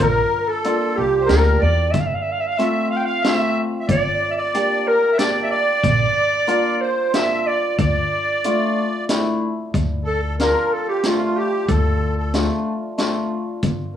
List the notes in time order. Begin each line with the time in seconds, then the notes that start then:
0.00 A#1 A#4, kick
0.40 A#4
0.47 A4
0.64 A#3 D4 F4, closed hi-hat
0.96 C2 G4
1.21 C5
1.26 D2 A#3 D4 G4 A#4, snare, closed hi-hat
1.59 E2 D5
1.92 F1 E5, kick, closed hi-hat
2.00 F5
2.07 E5
2.15 F5
2.22 E5
2.32 F5
2.40 E5
2.47 F5
2.57 A3 C4 F4 E5, closed hi-hat
2.90 F5
2.97 G5
3.05 F5
3.21 A3 C4 F4 E5, snare, closed hi-hat
3.80 E5
3.88 G1 D5, kick, closed hi-hat
4.31 E5
4.36 D5
4.54 A#3 D4 G4, closed hi-hat
4.87 A#4
5.12 E5
5.18 A#3 D4 G4 D5, snare, closed hi-hat
5.42 E5
5.50 D5
5.84 A#1, kick, closed hi-hat
6.47 A#3 D4 F4, closed hi-hat
6.81 C5
7.14 A#3 D4 F4 E5, snare, closed hi-hat
7.46 D5
7.79 D2 D5, kick, closed hi-hat
8.44 A3 D4 F4, closed hi-hat
9.09 A3 D4 E4, snare, closed hi-hat
9.74 D2, kick, closed hi-hat
10.04 A4
10.39 F3 D4 F4 A#4, snare, closed hi-hat
10.72 A4
10.87 G4
11.03 A3 D4 F4, snare, closed hi-hat
11.37 G4
11.69 D2 A4, kick, closed hi-hat
12.17 A4
12.34 A3 D4 F4, snare, closed hi-hat
12.98 A3 D4 F4, snare, closed hi-hat
13.63 G1, kick, closed hi-hat